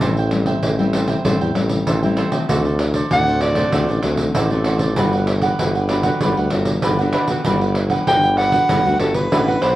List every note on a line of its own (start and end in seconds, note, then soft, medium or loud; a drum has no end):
0.00 0.54 A1 loud
0.00 0.60 A2 medium
0.00 0.11 G3 medium
0.00 0.11 C4 medium
0.00 0.11 E4 medium
0.00 0.15 A4 medium
0.00 0.16 C5 medium
0.00 0.16 E5 medium
0.00 0.16 G5 medium
0.00 pandeiro medium
0.17 0.31 C5 soft
0.17 0.31 E5 soft
0.17 0.32 G5 medium
0.17 pandeiro soft
0.31 0.61 G3 medium
0.31 0.61 C4 medium
0.31 0.61 E4 medium
0.31 muted cavaquinho stroke soft
0.31 pandeiro medium
0.46 0.78 C5 medium
0.46 0.77 E5 medium
0.46 0.77 G5 medium
0.46 pandeiro medium
0.63 1.16 A1 medium
0.63 1.22 E3 medium
0.63 pandeiro medium
0.79 1.20 G3 medium
0.79 1.21 C4 medium
0.79 1.21 E4 medium
0.79 0.93 C5 soft
0.79 0.94 E5 soft
0.79 0.93 G5 medium
0.79 pandeiro soft
0.93 1.08 A4 soft
0.93 1.09 C5 medium
0.93 1.08 E5 medium
0.93 1.07 G5 medium
0.93 pandeiro medium
1.08 1.24 C5 medium
1.08 1.24 E5 medium
1.08 1.23 G5 medium
1.08 pandeiro medium
1.25 1.38 A1 loud
1.25 1.84 A2 medium
1.25 1.51 G3 medium
1.25 1.51 C4 medium
1.25 1.52 E4 medium
1.25 1.39 A4 medium
1.25 1.40 C5 medium
1.25 1.40 E5 medium
1.25 1.40 G5 medium
1.25 pandeiro medium
1.41 1.54 E2 medium
1.41 1.54 C5 soft
1.41 1.55 E5 medium
1.41 1.55 G5 soft
1.41 pandeiro soft
1.55 1.82 A1 medium
1.55 1.84 G3 medium
1.55 1.85 C4 medium
1.55 1.85 E4 medium
1.55 muted cavaquinho stroke soft
1.55 pandeiro medium
1.69 pandeiro medium
1.86 2.22 A1 medium
1.86 2.46 E3 medium
1.86 2.01 A4 medium
1.86 2.01 C5 medium
1.86 2.02 E5 medium
1.86 2.01 G5 medium
1.86 pandeiro medium
2.03 2.29 G3 medium
2.03 2.29 C4 medium
2.03 2.30 E4 medium
2.03 2.17 C5 soft
2.03 2.17 E5 soft
2.03 2.17 G5 soft
2.03 pandeiro soft
2.17 2.32 A4 medium
2.17 2.32 C5 medium
2.17 2.32 E5 medium
2.17 2.31 G5 medium
2.17 pandeiro medium
2.31 2.74 A3 medium
2.31 2.74 C4 medium
2.31 2.74 F#4 medium
2.31 2.48 C5 soft
2.31 2.48 E5 soft
2.31 2.47 G5 medium
2.31 pandeiro medium
2.49 3.02 D2 loud
2.49 3.08 D3 medium
2.49 2.63 F#4 medium
2.49 2.64 A4 medium
2.49 2.64 C5 medium
2.49 2.63 D5 medium
2.49 pandeiro medium
2.65 2.78 A4 soft
2.65 2.79 C5 soft
2.65 2.79 D5 soft
2.65 pandeiro soft
2.79 muted cavaquinho stroke soft
2.79 pandeiro medium
2.94 3.25 A4 medium
2.94 3.25 C5 medium
2.94 3.25 D5 medium
2.94 pandeiro medium
3.11 3.64 D2 medium
3.11 3.70 A2 medium
3.11 3.53 A3 medium
3.11 3.53 C4 medium
3.11 3.53 F#4 medium
3.11 3.41 F#5 loud
3.11 pandeiro medium
3.26 3.41 A4 soft
3.26 3.42 C5 soft
3.26 3.42 D5 soft
3.26 pandeiro soft
3.41 3.56 F#4 soft
3.41 3.57 A4 medium
3.41 3.56 C5 medium
3.41 4.00 D5 medium
3.41 3.55 D5 medium
3.41 pandeiro medium
3.55 3.99 A3 medium
3.55 3.99 C4 medium
3.55 3.99 F#4 medium
3.55 3.72 A4 medium
3.55 3.72 C5 medium
3.55 3.71 D5 medium
3.55 pandeiro medium
3.72 3.86 D2 loud
3.72 4.33 D3 medium
3.72 3.87 F#4 medium
3.72 3.88 A4 medium
3.72 3.88 C5 medium
3.72 3.88 D5 medium
3.72 pandeiro medium
3.88 4.02 A1 medium
3.88 4.03 A4 soft
3.88 4.03 C5 soft
3.88 4.03 D5 soft
3.88 pandeiro soft
4.03 4.30 D2 medium
4.03 4.33 A3 medium
4.03 4.34 C4 medium
4.03 4.34 F#4 medium
4.03 muted cavaquinho stroke soft
4.03 pandeiro medium
4.17 pandeiro medium
4.35 4.99 A1 loud
4.35 4.95 A2 medium
4.35 4.49 F#4 medium
4.35 4.50 A4 medium
4.35 4.50 C5 medium
4.35 4.49 D5 medium
4.35 pandeiro medium
4.51 4.93 A3 medium
4.51 4.93 C4 medium
4.51 4.93 F#4 medium
4.51 4.65 A4 soft
4.51 4.66 C5 soft
4.51 4.65 D5 medium
4.51 pandeiro soft
4.64 4.80 F#4 medium
4.64 4.81 A4 medium
4.64 4.80 C5 medium
4.64 4.79 D5 medium
4.64 pandeiro medium
4.79 4.96 A4 soft
4.79 4.96 C5 soft
4.79 4.96 D5 soft
4.79 pandeiro medium
4.96 5.50 G1 loud
4.96 5.56 G3 medium
4.96 5.54 B3 medium
4.96 5.12 D4 medium
4.96 5.55 D4 medium
4.96 5.55 F#4 medium
4.96 5.12 G4 medium
4.96 5.12 B4 medium
4.96 5.12 F#5 medium
4.96 pandeiro medium
5.13 5.27 G4 soft
5.13 5.27 B4 soft
5.13 5.27 F#5 medium
5.13 pandeiro soft
5.27 muted cavaquinho stroke soft
5.27 pandeiro medium
5.41 5.74 G4 medium
5.41 5.73 B4 medium
5.41 5.73 F#5 medium
5.41 pandeiro medium
5.59 6.12 G1 medium
5.59 6.19 D3 medium
5.59 5.78 B3 medium
5.59 5.78 D4 medium
5.59 5.78 F#4 medium
5.59 pandeiro medium
5.75 5.89 G4 soft
5.75 5.90 B4 soft
5.75 5.89 F#5 soft
5.75 pandeiro soft
5.89 6.00 B3 medium
5.89 6.04 D4 medium
5.89 6.00 D4 medium
5.89 6.00 F#4 medium
5.89 6.04 G4 medium
5.89 6.03 B4 medium
5.89 6.02 F#5 medium
5.89 pandeiro medium
6.03 6.47 B3 medium
6.03 6.47 D4 medium
6.03 6.48 F#4 medium
6.03 6.20 G4 medium
6.03 6.20 B4 medium
6.03 6.19 F#5 medium
6.03 pandeiro medium
6.21 6.35 G1 loud
6.21 6.81 G3 medium
6.21 6.36 D4 medium
6.21 6.36 G4 medium
6.21 6.36 B4 medium
6.21 6.36 F#5 medium
6.21 pandeiro medium
6.37 6.51 D2 medium
6.37 6.51 G4 soft
6.37 6.51 B4 soft
6.37 6.51 F#5 medium
6.37 pandeiro soft
6.50 6.79 G1 medium
6.50 6.94 B3 medium
6.50 6.94 D4 medium
6.50 6.95 F#4 medium
6.50 muted cavaquinho stroke soft
6.50 pandeiro medium
6.65 pandeiro medium
6.82 7.14 G1 loud
6.82 7.43 D3 medium
6.82 6.97 D4 medium
6.82 6.98 G4 medium
6.82 6.98 B4 medium
6.82 6.97 F#5 medium
6.82 pandeiro medium
6.98 7.26 B3 medium
6.98 7.26 D4 medium
6.98 7.27 F#4 medium
6.98 7.12 G4 soft
6.98 7.12 B4 soft
6.98 7.13 F#5 medium
6.98 pandeiro soft
7.12 7.28 D4 medium
7.12 7.28 G4 medium
7.12 7.28 B4 medium
7.12 7.27 F#5 medium
7.12 pandeiro medium
7.28 7.41 B3 medium
7.28 7.41 D4 medium
7.28 7.41 F#4 medium
7.28 7.44 G4 soft
7.28 7.44 B4 soft
7.28 7.43 F#5 soft
7.28 pandeiro medium
7.45 7.99 G1 loud
7.45 8.05 G3 medium
7.45 8.03 B3 medium
7.45 7.59 D4 medium
7.45 8.04 D4 medium
7.45 8.04 F#4 medium
7.45 7.60 G4 medium
7.45 7.60 B4 medium
7.45 7.60 F#5 medium
7.45 pandeiro medium
7.61 7.75 G4 soft
7.61 7.75 B4 soft
7.61 7.75 F#5 medium
7.61 pandeiro soft
7.75 muted cavaquinho stroke soft
7.75 pandeiro medium
7.90 8.22 G4 medium
7.90 8.21 B4 medium
7.90 8.21 F#5 medium
7.90 pandeiro medium
8.07 8.61 G1 medium
8.07 8.67 D3 medium
8.07 8.37 B3 medium
8.07 8.37 D4 medium
8.07 8.37 F#4 medium
8.07 8.36 G5 loud
8.07 pandeiro medium
8.23 8.37 G4 soft
8.23 8.37 B4 soft
8.23 8.37 F#5 soft
8.23 pandeiro soft
8.37 8.52 D4 medium
8.37 8.53 G4 medium
8.37 8.52 B4 medium
8.37 8.96 F#5 loud
8.37 8.51 F#5 medium
8.37 pandeiro medium
8.52 8.80 B3 medium
8.52 8.80 D4 medium
8.52 8.80 F#4 medium
8.52 8.68 G4 medium
8.52 8.68 B4 medium
8.52 8.68 F#5 medium
8.52 pandeiro medium
8.69 8.83 G1 loud
8.69 9.29 G3 medium
8.69 8.84 D4 medium
8.69 8.84 G4 medium
8.69 8.84 B4 medium
8.69 8.84 F#5 medium
8.69 pandeiro medium
8.85 8.99 D2 medium
8.85 8.96 B3 medium
8.85 8.96 D4 medium
8.85 8.97 F#4 medium
8.85 8.98 G4 soft
8.85 8.98 B4 soft
8.85 8.99 F#5 medium
8.85 pandeiro soft
8.99 9.27 G1 medium
8.99 9.26 B3 medium
8.99 9.27 D4 medium
8.99 9.27 F#4 medium
8.99 9.16 A4 medium
8.99 muted cavaquinho stroke soft
8.99 pandeiro medium
9.14 9.63 B4 medium
9.14 pandeiro medium
9.32 9.60 A1 medium
9.32 9.75 D3 medium
9.32 9.42 B3 medium
9.32 9.46 D4 medium
9.32 9.43 D4 medium
9.32 9.43 F#4 medium
9.32 9.46 G4 medium
9.32 9.47 B4 medium
9.32 9.46 F#5 medium
9.32 pandeiro medium
9.47 9.75 B3 medium
9.47 9.75 D4 medium
9.47 9.75 F#4 medium
9.47 9.61 G4 soft
9.47 9.61 B4 soft
9.47 9.62 F#5 medium
9.47 pandeiro soft
9.62 9.75 B1 medium
9.62 9.75 D4 medium
9.62 9.75 G4 medium
9.62 9.75 B4 medium
9.62 9.75 C5 loud
9.62 9.75 F#5 medium
9.62 pandeiro medium